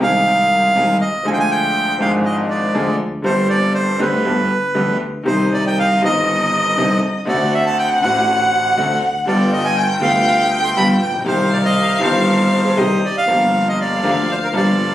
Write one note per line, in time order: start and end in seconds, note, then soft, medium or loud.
0.00 0.72 C2 medium
0.00 0.72 C3 medium
0.00 0.71 D#3 medium
0.00 0.72 G#3 medium
0.00 0.72 C4 medium
0.00 0.72 D#4 medium
0.00 0.73 G#4 medium
0.00 0.97 F5 loud
0.75 0.97 C2 medium
0.75 0.97 C3 medium
0.75 0.97 D#3 medium
0.75 0.96 G#3 medium
0.75 0.97 C4 medium
0.75 0.97 D#4 medium
0.75 0.97 G#4 medium
1.01 1.26 D#5 medium
1.23 1.96 D2 medium
1.23 1.96 D3 medium
1.23 1.95 F3 medium
1.23 1.96 G#3 medium
1.23 1.96 D4 medium
1.23 1.96 F4 medium
1.23 1.96 G#4 loud
1.23 1.97 G#4 medium
1.23 1.29 G#5 medium
1.33 1.39 G5 medium
1.40 1.50 G#5 loud
1.51 1.97 G5 loud
1.98 2.70 G#1 loud
1.98 2.71 G#1 medium
1.98 2.71 G#2 medium
1.98 2.70 F3 medium
1.98 2.70 G#3 medium
1.98 2.71 D4 medium
1.98 2.71 F4 medium
1.98 2.71 G#4 medium
1.98 2.72 G#4 medium
1.98 2.12 F5 medium
2.25 2.36 D#5 medium
2.50 2.96 D5 medium
2.74 2.95 D2 medium
2.74 2.95 D3 medium
2.74 2.95 F3 medium
2.74 2.95 G#3 medium
2.74 2.95 D4 medium
2.74 2.95 F4 medium
2.74 2.95 G#4 medium
3.22 3.96 G1 medium
3.22 3.96 G2 medium
3.22 3.95 D3 medium
3.22 3.96 G3 medium
3.22 3.96 C4 medium
3.22 3.96 D4 medium
3.22 3.96 G4 medium
3.22 3.48 C5 medium
3.26 3.97 G4 medium
3.50 3.73 D5 loud
3.75 4.01 C5 medium
3.99 4.21 D2 medium
3.99 4.21 D3 medium
3.99 4.21 G3 medium
3.99 4.21 C4 medium
3.99 4.21 D4 medium
3.99 4.21 G4 medium
3.99 4.98 B4 medium
4.24 4.46 G1 medium
4.24 4.46 G2 medium
4.24 4.46 D3 medium
4.24 4.46 G3 medium
4.24 4.46 B3 medium
4.24 4.46 D4 medium
4.24 4.46 G4 medium
4.74 4.97 D2 medium
4.74 4.96 D3 medium
4.74 4.96 G3 medium
4.74 4.96 B3 medium
4.74 4.97 D4 medium
4.74 4.97 G4 medium
5.23 5.98 C2 medium
5.23 5.98 C3 medium
5.23 5.97 D#3 medium
5.23 5.98 G3 medium
5.23 5.98 C4 medium
5.23 5.99 D#4 medium
5.23 5.50 C5 medium
5.23 7.23 D#5 medium
5.27 5.99 D#4 medium
5.54 5.65 D5 medium
5.67 5.79 G5 medium
5.79 6.02 F5 loud
6.00 6.74 G1 medium
6.00 6.74 G2 medium
6.00 6.73 D#3 medium
6.00 6.74 G3 medium
6.00 6.74 C4 medium
6.00 6.74 D#4 medium
6.00 6.75 D#4 medium
6.05 7.00 D#5 medium
6.77 6.98 C2 medium
6.77 6.99 C2 medium
6.77 6.99 C3 medium
6.77 6.99 D3 medium
6.77 6.99 G3 medium
6.77 6.99 C4 medium
6.77 6.99 D4 medium
6.77 6.99 D#4 medium
7.25 7.99 D2 medium
7.25 7.99 D2 loud
7.25 7.99 D3 medium
7.25 7.98 A3 medium
7.25 7.99 C4 medium
7.25 7.99 D4 medium
7.25 7.99 F#4 medium
7.25 8.00 F#4 medium
7.25 7.54 D5 medium
7.25 9.29 F#5 loud
7.54 7.65 E5 medium
7.66 7.77 A5 medium
7.79 7.90 G5 loud
8.02 8.74 A1 medium
8.02 8.74 A2 medium
8.02 8.73 D3 medium
8.02 8.74 A3 medium
8.02 8.74 C4 medium
8.02 8.75 C4 medium
8.02 8.74 D4 medium
8.02 8.74 F#4 medium
8.02 8.75 F#4 medium
8.02 8.99 F#5 loud
8.77 8.99 D2 medium
8.77 8.99 D2 loud
8.77 8.99 D3 medium
8.77 8.99 A3 medium
8.77 8.99 C4 medium
8.77 8.99 D4 medium
8.77 8.99 F#4 medium
9.25 9.98 G1 loud
9.25 9.98 G1 medium
9.25 9.98 G2 medium
9.25 9.97 D3 medium
9.25 9.98 G3 medium
9.25 9.98 B3 medium
9.25 9.98 F4 medium
9.25 9.99 F4 medium
9.25 9.98 G4 medium
9.25 9.51 D5 medium
9.25 11.28 G5 loud
9.53 9.65 D#5 medium
9.65 9.77 G#5 medium
9.77 9.88 G5 loud
10.00 10.73 D2 loud
10.00 10.73 D2 medium
10.00 10.73 D3 loud
10.00 10.73 G3 medium
10.00 10.73 B3 medium
10.00 10.73 F4 medium
10.00 10.73 G4 medium
10.00 10.25 F5 medium
10.04 10.74 F4 medium
10.27 10.50 F5 loud
10.52 10.63 G5 loud
10.64 10.70 C6 loud
10.76 10.98 G1 loud
10.76 10.98 G1 medium
10.76 10.98 G2 medium
10.76 10.98 D3 medium
10.76 10.98 G3 medium
10.76 10.97 B3 medium
10.76 10.98 B3 medium
10.76 10.97 F4 medium
10.76 10.98 F4 medium
10.76 10.97 G4 medium
10.76 10.88 B5 loud
11.02 11.26 A#1 medium
11.02 11.13 G5 medium
11.08 11.14 A1 medium
11.14 11.20 A#1 medium
11.20 11.26 B1 medium
11.20 11.96 D#3 medium
11.25 11.97 C2 medium
11.25 11.98 C2 loud
11.25 11.98 C3 medium
11.25 11.97 G3 medium
11.25 11.98 C4 medium
11.25 11.98 D#4 medium
11.25 11.98 G4 medium
11.25 11.50 C5 medium
11.25 12.79 F5 loud
11.53 11.58 D5 medium
11.65 11.99 D#5 medium
11.99 12.73 G1 loud
11.99 12.74 G1 loud
11.99 12.73 G2 loud
11.99 12.72 D#3 medium
11.99 12.73 G3 medium
11.99 12.73 C4 medium
11.99 12.74 C4 medium
11.99 12.74 D#4 medium
11.99 12.74 G4 medium
12.04 13.00 C5 medium
12.51 12.63 C5 loud
12.64 12.79 G#4 medium
12.77 12.99 C2 medium
12.77 12.99 C3 medium
12.77 12.98 D#3 medium
12.77 12.99 G3 medium
12.77 12.99 C4 medium
12.77 12.99 D#4 medium
12.77 13.28 G4 medium
12.77 12.99 G4 medium
12.77 13.27 D#5 medium
13.05 13.16 D5 medium
13.18 13.68 F5 loud
13.26 14.00 G1 medium
13.26 14.00 G1 loud
13.26 14.00 G2 medium
13.26 13.99 F3 medium
13.26 13.99 A#3 medium
13.26 14.00 A#3 medium
13.26 14.00 D4 medium
13.26 14.00 F4 medium
13.26 14.00 G4 medium
13.26 14.95 F5 medium
13.30 14.01 G4 medium
13.69 13.79 D#5 medium
13.81 14.31 D5 medium
14.03 14.25 D2 medium
14.03 14.25 D3 medium
14.03 14.25 F3 medium
14.03 14.25 A#3 medium
14.03 14.25 D4 medium
14.03 14.25 F4 medium
14.03 14.25 G4 medium
14.31 14.36 C5 medium
14.44 14.49 A#4 medium
14.52 14.95 G1 medium
14.52 14.95 G2 medium
14.52 14.95 F3 medium
14.52 14.95 A#3 medium
14.52 14.95 D4 medium
14.52 14.95 F4 medium
14.52 14.95 G4 medium
14.56 14.95 D5 medium